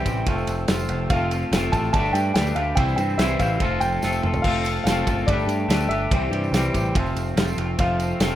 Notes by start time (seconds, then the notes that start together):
Already playing: C3 E3 C4 G4 E5
0.05 A1 G3 C4 G4, kick, ride, tambourine
0.17 tambourine
0.26 F1 F3 A3 C4 F4 A4 F5, kick, ride, tambourine
0.38 tambourine
0.47 F1, ride, tambourine
0.68 F1 F3 A3 C4 F4, snare, ride, tambourine
0.79 tambourine
0.89 F1 A3 C4 F4, ride, tambourine
1.10 F1 F3 A3 C4 F4 F5, kick, ride, tambourine
1.31 A3 C4 F4, ride, tambourine
1.43 tambourine
1.52 F1 F3 A3, snare, ride, tambourine
1.56 C4 F4
1.72 A1 C4 F4 A5, kick, ride, tambourine
1.77 A3
1.85 tambourine
1.93 G1 G3 A3 D4 G4 B4 A5, kick, ride, tambourine
1.97 B4
2.06 tambourine
2.13 G2 G5, ride, tambourine
2.34 D2 A3 D4 G4 G5, snare, ride, tambourine
2.38 B4
2.47 tambourine
2.55 D2 D4 G4 B4 F5, ride, tambourine
2.75 C2 C3 E3 G3 C4 E4 G4 C5 E5 G5, kick, ride
2.88 tambourine
2.96 G2 G3 C4 E4 C5 G5, ride, tambourine
3.10 tambourine
3.18 C2 C3 E3 G3 C4 E4 C5 E5, snare, ride, tambourine
3.30 tambourine
3.39 A1 G3 C4 E4 C5 F5, kick, ride, tambourine
3.60 F1 F3 A3 C4 F4 A4 F5, kick, ride, tambourine
3.80 F1 G5, ride, tambourine
3.92 tambourine
4.02 F1 A3 C4 F4 A4, snare, tambourine
4.13 tambourine
4.23 F1 C4 F4 A4, mid tom
4.33 floor tom, tambourine
4.42 F1 F3 A3 C4 F5, kick, crash, tambourine
4.46 F4 A4
4.64 C4 F4 A4, ride, tambourine
4.76 tambourine
4.84 F1 F3 A3 F5, snare, ride, tambourine
4.88 C4 F4 A4
5.07 F#1 C4 F4 A4, kick, ride, tambourine
5.18 tambourine
5.27 G1 G3 A3 D4 G4 B4 D5, kick, ride, tambourine
5.39 tambourine
5.47 G2, ride, tambourine
5.68 D2 A3 D4 G4 B4, snare, ride, tambourine
5.80 tambourine
5.89 G1 D4 G4 B4 E5, ride, tambourine
6.11 C2 C3 E3 G3 C4 G4 E5, kick, ride, tambourine
6.31 G2 G3 C4 G4, ride
6.44 tambourine
6.52 C2 C3 E3 G3 C4 G4, snare, ride, tambourine
6.64 tambourine
6.74 A1 G3 C4 G4, kick, ride, tambourine
6.85 tambourine
6.93 F1 F3 A3 C4 F4 A4 F5, kick, ride, tambourine
7.06 tambourine
7.15 F1, ride, tambourine
7.36 F1 F3 A3 C4 F4, snare, ride, tambourine
7.48 tambourine
7.58 F1 A3 C4 F4, ride, tambourine
7.78 F1 F3 A3 C4 F4 F5, kick, ride, tambourine
8.00 A3 C4 F4, ride, tambourine
8.11 tambourine
8.20 F1 F3 A3 C4 F4, snare, ride, tambourine